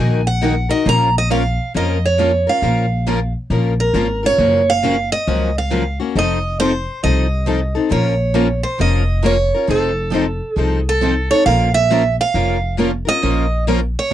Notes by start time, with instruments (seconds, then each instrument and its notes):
Already playing: steel-string acoustic guitar D#3 G#5
0.00 upright bass A#1, steel-string acoustic guitar A#3 D#4 F#4 A#4
0.27 steel-string acoustic guitar F#5
0.41 steel-string acoustic guitar D#3 A#3 D#4 F#4 A#4
0.69 steel-string acoustic guitar D#4 F#4 A#4 D#5
0.85 upright bass A#1, steel-string acoustic guitar F3 A#3 C#4 F4 A#4 A#5
1.18 steel-string acoustic guitar D#5
1.30 steel-string acoustic guitar F3 A#3 C#4 F4 A#4 F5
1.74 upright bass F2, steel-string acoustic guitar F3 A#3 C#4 F4 A#4 D#5
2.06 steel-string acoustic guitar C#5
2.18 steel-string acoustic guitar F3 A#3 C#4 F4 A#4
2.47 steel-string acoustic guitar C#4 F4 A#4 F5
2.62 upright bass A#1, steel-string acoustic guitar F3 A#3 C#4 F4 A#4
3.07 steel-string acoustic guitar F3 A#3 C#4 F4 A#4
3.50 upright bass A#1, steel-string acoustic guitar F3 A#3 C#4 F4 A#4
3.80 steel-string acoustic guitar A#4
3.94 upright bass G#1, steel-string acoustic guitar F3 A#3 C#4 F4 A#4
4.23 steel-string acoustic guitar C#4 F4 A#4 C#5
4.38 upright bass F#1, steel-string acoustic guitar C#3 F3 F#3 A#3 C#4 F4 F#4 A#4
4.70 steel-string acoustic guitar F5
4.83 steel-string acoustic guitar C#3 F3 F#3 A#3 C#4 F4 F#4 A#4
5.12 steel-string acoustic guitar D#5
5.27 upright bass C#2, steel-string acoustic guitar C#3 F3 F#3 A#3 C#4 F4 F#4 A#4
5.58 steel-string acoustic guitar F5
5.70 steel-string acoustic guitar C#3 F3 F#3 A#3 C#4 F4 F#4 A#4
6.00 steel-string acoustic guitar A#3 C#4 F#4
6.15 upright bass F1, steel-string acoustic guitar F3 C4 D#4 A4 D#5
6.60 steel-string acoustic guitar F3 C4 D#4 A4 C5
7.03 upright bass C2, steel-string acoustic guitar F3 C4 D#4 A4 D#5
7.47 steel-string acoustic guitar F3 C4 D#4 A4
7.75 steel-string acoustic guitar C4 D#4 A4
7.91 upright bass A#1, steel-string acoustic guitar F3 A#3 C#4 F4 A#4 C#5
8.34 steel-string acoustic guitar F3 A#3 C#4 F4 A#4
8.63 steel-string acoustic guitar C5
8.80 upright bass F1, steel-string acoustic guitar F3 A#3 C#4 F4 A#4 D#5
9.24 steel-string acoustic guitar F3 A#3 C#4 F4 A#4 C#5
9.54 steel-string acoustic guitar C#4 F4 A#4
9.68 upright bass F1, steel-string acoustic guitar F3 C4 D#4 A4
10.14 steel-string acoustic guitar F3 C4 D#4 A4
10.53 upright bass C2, steel-string acoustic guitar G#4
10.58 steel-string acoustic guitar F3 C4 D#4 A4
10.89 steel-string acoustic guitar A4
11.02 steel-string acoustic guitar F3 C4 D#4 A4
11.31 steel-string acoustic guitar C4 D#4 A4 C#5
11.46 upright bass A#1, steel-string acoustic guitar F3 A#3 C#4 F4 A#4 F5
11.74 steel-string acoustic guitar E5
11.90 steel-string acoustic guitar F3 A#3 C#4 F4 A#4
12.21 steel-string acoustic guitar F5
12.34 upright bass F1, steel-string acoustic guitar F3 A#3 C#4 F4 A#4
12.77 steel-string acoustic guitar F3 A#3 C#4 F4 A#4
13.05 steel-string acoustic guitar C#4 F4 A#4 D#5
13.23 upright bass A#1, steel-string acoustic guitar F3 A#3 C#4 F4 A#4
13.67 steel-string acoustic guitar F3 A#3 C#4 F4 A#4
13.99 steel-string acoustic guitar C#5
14.10 steel-string acoustic guitar F3